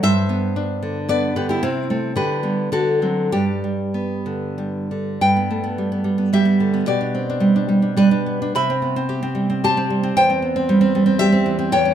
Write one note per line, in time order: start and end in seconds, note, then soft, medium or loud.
0.03 1.57 G2 medium
0.03 1.06 C5 medium
0.03 1.05 E5 loud
0.29 1.07 B3 medium
0.56 1.36 D4 medium
0.83 1.35 D3 medium
1.09 1.61 B3 medium
1.09 1.35 B4 medium
1.09 1.35 D5 loud
1.36 1.62 D3 medium
1.36 1.48 G4 medium
1.36 1.49 B4 loud
1.49 1.61 E4 medium
1.49 1.62 G4 loud
1.63 2.13 C3 medium
1.63 1.89 C4 medium
1.63 2.12 E4 loud
1.90 2.13 A3 medium
1.90 2.13 C4 medium
2.16 2.70 D3 medium
2.16 2.43 G4 medium
2.16 2.69 B4 medium
2.43 2.68 G3 medium
2.43 2.69 B3 medium
2.72 3.30 D3 medium
2.72 3.29 F#4 medium
2.72 3.30 A4 loud
3.02 3.29 F#3 soft
3.02 3.29 C4 medium
3.32 5.17 G2 medium
3.32 4.86 D4 medium
3.32 4.85 G4 medium
3.64 4.57 G3 soft
3.94 4.89 B3 medium
4.26 4.90 D3 soft
4.58 5.21 G3 medium
4.91 5.21 D3 soft
5.21 6.82 G2 medium
5.21 6.28 B4 medium
5.21 6.28 G5 loud
5.37 5.62 B3 medium
5.51 6.32 A3 medium
5.64 5.91 B3 medium
5.78 6.03 G3 medium
5.92 6.17 B3 medium
6.04 6.32 G3 medium
6.18 6.44 B3 medium
6.33 6.86 G3 medium
6.33 6.83 G4 medium
6.33 6.84 E5 loud
6.45 6.72 B3 medium
6.60 6.86 D3 soft
6.74 6.86 B3 medium
6.87 8.52 B2 medium
6.87 7.93 G4 medium
6.87 7.93 D5 medium
7.01 7.28 D4 medium
7.15 7.96 C4 medium
7.30 7.55 D4 medium
7.40 7.67 G3 medium
7.56 7.81 D4 medium
7.69 7.95 G3 medium
7.82 7.97 D4 medium
7.97 8.55 G3 medium
7.97 8.10 D4 medium
7.97 8.53 B4 loud
8.11 8.41 D4 medium
8.26 8.55 B3 medium
8.42 8.55 D4 medium
8.55 10.11 C3 medium
8.55 9.58 E5 loud
8.55 9.58 B5 loud
8.70 8.95 C4 medium
8.82 9.62 B3 medium
8.96 9.21 C4 medium
9.09 9.63 G4 medium
9.23 9.48 C4 medium
9.35 9.89 G3 medium
9.50 9.76 C4 medium
9.64 10.16 G4 medium
9.64 10.13 C5 medium
9.64 10.14 A5 loud
9.77 10.02 C4 medium
9.90 10.16 G3 medium
10.03 10.16 C4 medium
10.17 11.69 E2 medium
10.17 11.17 C5 medium
10.17 11.16 G5 loud
10.30 10.55 C4 medium
10.42 11.20 B3 medium
10.56 10.80 C4 medium
10.69 10.94 G3 medium
10.81 11.05 C4 medium
10.95 11.18 G3 medium
11.06 11.31 C4 medium
11.19 11.72 G3 medium
11.19 11.69 G4 medium
11.19 11.70 E5 loud
11.32 11.57 C4 medium
11.46 11.72 E3 medium
11.59 11.72 C4 medium
11.72 11.94 E2 medium
11.72 11.94 C#5 medium
11.72 11.94 G5 loud
11.85 11.94 C#4 medium